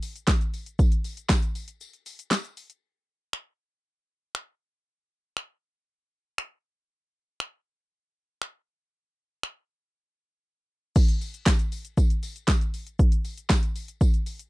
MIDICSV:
0, 0, Header, 1, 2, 480
1, 0, Start_track
1, 0, Tempo, 508475
1, 745, Time_signature, 4, 2, 24, 8
1, 13685, End_track
2, 0, Start_track
2, 0, Title_t, "Drums"
2, 24, Note_on_c, 9, 46, 87
2, 24, Note_on_c, 9, 82, 62
2, 28, Note_on_c, 9, 54, 59
2, 119, Note_off_c, 9, 46, 0
2, 119, Note_off_c, 9, 82, 0
2, 122, Note_off_c, 9, 54, 0
2, 148, Note_on_c, 9, 42, 68
2, 148, Note_on_c, 9, 82, 71
2, 242, Note_off_c, 9, 42, 0
2, 242, Note_off_c, 9, 82, 0
2, 260, Note_on_c, 9, 38, 102
2, 264, Note_on_c, 9, 36, 127
2, 266, Note_on_c, 9, 39, 125
2, 266, Note_on_c, 9, 54, 78
2, 266, Note_on_c, 9, 82, 85
2, 354, Note_off_c, 9, 38, 0
2, 358, Note_off_c, 9, 36, 0
2, 360, Note_off_c, 9, 39, 0
2, 360, Note_off_c, 9, 54, 0
2, 361, Note_off_c, 9, 82, 0
2, 388, Note_on_c, 9, 42, 53
2, 388, Note_on_c, 9, 82, 54
2, 482, Note_off_c, 9, 42, 0
2, 482, Note_off_c, 9, 82, 0
2, 507, Note_on_c, 9, 46, 75
2, 507, Note_on_c, 9, 82, 55
2, 509, Note_on_c, 9, 54, 33
2, 601, Note_off_c, 9, 46, 0
2, 601, Note_off_c, 9, 82, 0
2, 603, Note_off_c, 9, 54, 0
2, 627, Note_on_c, 9, 42, 71
2, 627, Note_on_c, 9, 82, 71
2, 721, Note_off_c, 9, 42, 0
2, 721, Note_off_c, 9, 82, 0
2, 745, Note_on_c, 9, 54, 35
2, 746, Note_on_c, 9, 36, 124
2, 747, Note_on_c, 9, 82, 77
2, 840, Note_off_c, 9, 54, 0
2, 841, Note_off_c, 9, 36, 0
2, 841, Note_off_c, 9, 82, 0
2, 866, Note_on_c, 9, 42, 64
2, 866, Note_on_c, 9, 82, 61
2, 961, Note_off_c, 9, 42, 0
2, 961, Note_off_c, 9, 82, 0
2, 986, Note_on_c, 9, 46, 63
2, 986, Note_on_c, 9, 82, 47
2, 989, Note_on_c, 9, 54, 56
2, 1080, Note_off_c, 9, 46, 0
2, 1080, Note_off_c, 9, 82, 0
2, 1083, Note_off_c, 9, 54, 0
2, 1106, Note_on_c, 9, 42, 76
2, 1106, Note_on_c, 9, 82, 76
2, 1200, Note_off_c, 9, 42, 0
2, 1200, Note_off_c, 9, 82, 0
2, 1221, Note_on_c, 9, 38, 103
2, 1222, Note_on_c, 9, 82, 93
2, 1224, Note_on_c, 9, 36, 118
2, 1226, Note_on_c, 9, 39, 127
2, 1226, Note_on_c, 9, 54, 78
2, 1315, Note_off_c, 9, 38, 0
2, 1317, Note_off_c, 9, 82, 0
2, 1319, Note_off_c, 9, 36, 0
2, 1321, Note_off_c, 9, 39, 0
2, 1321, Note_off_c, 9, 54, 0
2, 1345, Note_on_c, 9, 42, 58
2, 1345, Note_on_c, 9, 82, 58
2, 1439, Note_off_c, 9, 42, 0
2, 1439, Note_off_c, 9, 82, 0
2, 1465, Note_on_c, 9, 46, 76
2, 1465, Note_on_c, 9, 82, 53
2, 1467, Note_on_c, 9, 54, 49
2, 1560, Note_off_c, 9, 46, 0
2, 1560, Note_off_c, 9, 82, 0
2, 1561, Note_off_c, 9, 54, 0
2, 1584, Note_on_c, 9, 42, 79
2, 1584, Note_on_c, 9, 82, 81
2, 1678, Note_off_c, 9, 42, 0
2, 1678, Note_off_c, 9, 82, 0
2, 1706, Note_on_c, 9, 82, 84
2, 1708, Note_on_c, 9, 54, 56
2, 1801, Note_off_c, 9, 82, 0
2, 1802, Note_off_c, 9, 54, 0
2, 1826, Note_on_c, 9, 42, 44
2, 1826, Note_on_c, 9, 82, 45
2, 1920, Note_off_c, 9, 42, 0
2, 1920, Note_off_c, 9, 82, 0
2, 1945, Note_on_c, 9, 46, 83
2, 1945, Note_on_c, 9, 82, 60
2, 1947, Note_on_c, 9, 54, 59
2, 2039, Note_off_c, 9, 46, 0
2, 2039, Note_off_c, 9, 82, 0
2, 2042, Note_off_c, 9, 54, 0
2, 2068, Note_on_c, 9, 42, 72
2, 2068, Note_on_c, 9, 82, 74
2, 2162, Note_off_c, 9, 42, 0
2, 2162, Note_off_c, 9, 82, 0
2, 2180, Note_on_c, 9, 38, 105
2, 2184, Note_on_c, 9, 54, 81
2, 2186, Note_on_c, 9, 39, 124
2, 2187, Note_on_c, 9, 82, 84
2, 2275, Note_off_c, 9, 38, 0
2, 2278, Note_off_c, 9, 54, 0
2, 2280, Note_off_c, 9, 39, 0
2, 2281, Note_off_c, 9, 82, 0
2, 2308, Note_on_c, 9, 42, 53
2, 2308, Note_on_c, 9, 82, 55
2, 2403, Note_off_c, 9, 42, 0
2, 2403, Note_off_c, 9, 82, 0
2, 2427, Note_on_c, 9, 46, 80
2, 2427, Note_on_c, 9, 82, 54
2, 2428, Note_on_c, 9, 54, 32
2, 2521, Note_off_c, 9, 46, 0
2, 2521, Note_off_c, 9, 82, 0
2, 2522, Note_off_c, 9, 54, 0
2, 2546, Note_on_c, 9, 42, 71
2, 2546, Note_on_c, 9, 82, 70
2, 2640, Note_off_c, 9, 42, 0
2, 2640, Note_off_c, 9, 82, 0
2, 3147, Note_on_c, 9, 26, 111
2, 3241, Note_off_c, 9, 26, 0
2, 4106, Note_on_c, 9, 26, 112
2, 4200, Note_off_c, 9, 26, 0
2, 5066, Note_on_c, 9, 26, 116
2, 5161, Note_off_c, 9, 26, 0
2, 6025, Note_on_c, 9, 26, 113
2, 6120, Note_off_c, 9, 26, 0
2, 6987, Note_on_c, 9, 26, 109
2, 7081, Note_off_c, 9, 26, 0
2, 7945, Note_on_c, 9, 26, 112
2, 8039, Note_off_c, 9, 26, 0
2, 8906, Note_on_c, 9, 26, 109
2, 9000, Note_off_c, 9, 26, 0
2, 10343, Note_on_c, 9, 54, 34
2, 10344, Note_on_c, 9, 49, 115
2, 10345, Note_on_c, 9, 36, 121
2, 10345, Note_on_c, 9, 82, 78
2, 10438, Note_off_c, 9, 54, 0
2, 10439, Note_off_c, 9, 36, 0
2, 10439, Note_off_c, 9, 49, 0
2, 10439, Note_off_c, 9, 82, 0
2, 10464, Note_on_c, 9, 42, 64
2, 10464, Note_on_c, 9, 82, 63
2, 10559, Note_off_c, 9, 42, 0
2, 10559, Note_off_c, 9, 82, 0
2, 10585, Note_on_c, 9, 46, 68
2, 10585, Note_on_c, 9, 82, 49
2, 10588, Note_on_c, 9, 54, 54
2, 10680, Note_off_c, 9, 46, 0
2, 10680, Note_off_c, 9, 82, 0
2, 10682, Note_off_c, 9, 54, 0
2, 10706, Note_on_c, 9, 42, 74
2, 10706, Note_on_c, 9, 82, 78
2, 10800, Note_off_c, 9, 42, 0
2, 10800, Note_off_c, 9, 82, 0
2, 10821, Note_on_c, 9, 38, 101
2, 10822, Note_on_c, 9, 82, 90
2, 10824, Note_on_c, 9, 36, 120
2, 10825, Note_on_c, 9, 54, 77
2, 10826, Note_on_c, 9, 39, 127
2, 10915, Note_off_c, 9, 38, 0
2, 10917, Note_off_c, 9, 82, 0
2, 10919, Note_off_c, 9, 36, 0
2, 10920, Note_off_c, 9, 54, 0
2, 10921, Note_off_c, 9, 39, 0
2, 10944, Note_on_c, 9, 42, 60
2, 10944, Note_on_c, 9, 82, 62
2, 11038, Note_off_c, 9, 42, 0
2, 11038, Note_off_c, 9, 82, 0
2, 11064, Note_on_c, 9, 46, 77
2, 11064, Note_on_c, 9, 82, 57
2, 11067, Note_on_c, 9, 54, 47
2, 11159, Note_off_c, 9, 46, 0
2, 11159, Note_off_c, 9, 82, 0
2, 11161, Note_off_c, 9, 54, 0
2, 11183, Note_on_c, 9, 42, 79
2, 11183, Note_on_c, 9, 82, 81
2, 11278, Note_off_c, 9, 42, 0
2, 11278, Note_off_c, 9, 82, 0
2, 11304, Note_on_c, 9, 36, 104
2, 11305, Note_on_c, 9, 82, 87
2, 11307, Note_on_c, 9, 54, 55
2, 11398, Note_off_c, 9, 36, 0
2, 11399, Note_off_c, 9, 82, 0
2, 11401, Note_off_c, 9, 54, 0
2, 11425, Note_on_c, 9, 42, 47
2, 11425, Note_on_c, 9, 82, 47
2, 11519, Note_off_c, 9, 42, 0
2, 11519, Note_off_c, 9, 82, 0
2, 11543, Note_on_c, 9, 46, 81
2, 11543, Note_on_c, 9, 82, 62
2, 11547, Note_on_c, 9, 54, 60
2, 11638, Note_off_c, 9, 46, 0
2, 11638, Note_off_c, 9, 82, 0
2, 11641, Note_off_c, 9, 54, 0
2, 11666, Note_on_c, 9, 42, 72
2, 11666, Note_on_c, 9, 82, 73
2, 11761, Note_off_c, 9, 42, 0
2, 11761, Note_off_c, 9, 82, 0
2, 11779, Note_on_c, 9, 38, 99
2, 11783, Note_on_c, 9, 54, 82
2, 11784, Note_on_c, 9, 36, 127
2, 11785, Note_on_c, 9, 39, 127
2, 11785, Note_on_c, 9, 82, 87
2, 11874, Note_off_c, 9, 38, 0
2, 11878, Note_off_c, 9, 36, 0
2, 11878, Note_off_c, 9, 54, 0
2, 11879, Note_off_c, 9, 39, 0
2, 11880, Note_off_c, 9, 82, 0
2, 11907, Note_on_c, 9, 42, 55
2, 11907, Note_on_c, 9, 82, 56
2, 12001, Note_off_c, 9, 42, 0
2, 12001, Note_off_c, 9, 82, 0
2, 12025, Note_on_c, 9, 46, 78
2, 12025, Note_on_c, 9, 82, 55
2, 12027, Note_on_c, 9, 54, 34
2, 12119, Note_off_c, 9, 46, 0
2, 12119, Note_off_c, 9, 82, 0
2, 12122, Note_off_c, 9, 54, 0
2, 12145, Note_on_c, 9, 42, 73
2, 12145, Note_on_c, 9, 82, 70
2, 12240, Note_off_c, 9, 42, 0
2, 12240, Note_off_c, 9, 82, 0
2, 12265, Note_on_c, 9, 82, 79
2, 12266, Note_on_c, 9, 36, 124
2, 12359, Note_off_c, 9, 82, 0
2, 12360, Note_off_c, 9, 36, 0
2, 12385, Note_on_c, 9, 42, 64
2, 12385, Note_on_c, 9, 82, 64
2, 12479, Note_off_c, 9, 42, 0
2, 12479, Note_off_c, 9, 82, 0
2, 12505, Note_on_c, 9, 46, 68
2, 12505, Note_on_c, 9, 82, 48
2, 12508, Note_on_c, 9, 54, 55
2, 12599, Note_off_c, 9, 46, 0
2, 12599, Note_off_c, 9, 82, 0
2, 12602, Note_off_c, 9, 54, 0
2, 12626, Note_on_c, 9, 42, 73
2, 12626, Note_on_c, 9, 82, 79
2, 12720, Note_off_c, 9, 42, 0
2, 12720, Note_off_c, 9, 82, 0
2, 12741, Note_on_c, 9, 38, 100
2, 12743, Note_on_c, 9, 82, 98
2, 12745, Note_on_c, 9, 36, 121
2, 12746, Note_on_c, 9, 54, 77
2, 12747, Note_on_c, 9, 39, 127
2, 12836, Note_off_c, 9, 38, 0
2, 12837, Note_off_c, 9, 82, 0
2, 12839, Note_off_c, 9, 36, 0
2, 12840, Note_off_c, 9, 54, 0
2, 12841, Note_off_c, 9, 39, 0
2, 12864, Note_on_c, 9, 42, 63
2, 12864, Note_on_c, 9, 82, 59
2, 12959, Note_off_c, 9, 42, 0
2, 12959, Note_off_c, 9, 82, 0
2, 12986, Note_on_c, 9, 46, 76
2, 12986, Note_on_c, 9, 54, 47
2, 12986, Note_on_c, 9, 82, 56
2, 13080, Note_off_c, 9, 46, 0
2, 13080, Note_off_c, 9, 82, 0
2, 13081, Note_off_c, 9, 54, 0
2, 13105, Note_on_c, 9, 42, 80
2, 13105, Note_on_c, 9, 82, 82
2, 13199, Note_off_c, 9, 42, 0
2, 13199, Note_off_c, 9, 82, 0
2, 13225, Note_on_c, 9, 36, 110
2, 13226, Note_on_c, 9, 82, 88
2, 13227, Note_on_c, 9, 54, 58
2, 13319, Note_off_c, 9, 36, 0
2, 13320, Note_off_c, 9, 82, 0
2, 13321, Note_off_c, 9, 54, 0
2, 13346, Note_on_c, 9, 42, 47
2, 13346, Note_on_c, 9, 82, 49
2, 13441, Note_off_c, 9, 42, 0
2, 13441, Note_off_c, 9, 82, 0
2, 13464, Note_on_c, 9, 46, 84
2, 13464, Note_on_c, 9, 82, 61
2, 13468, Note_on_c, 9, 54, 59
2, 13559, Note_off_c, 9, 46, 0
2, 13559, Note_off_c, 9, 82, 0
2, 13562, Note_off_c, 9, 54, 0
2, 13588, Note_on_c, 9, 42, 74
2, 13588, Note_on_c, 9, 82, 69
2, 13682, Note_off_c, 9, 42, 0
2, 13682, Note_off_c, 9, 82, 0
2, 13685, End_track
0, 0, End_of_file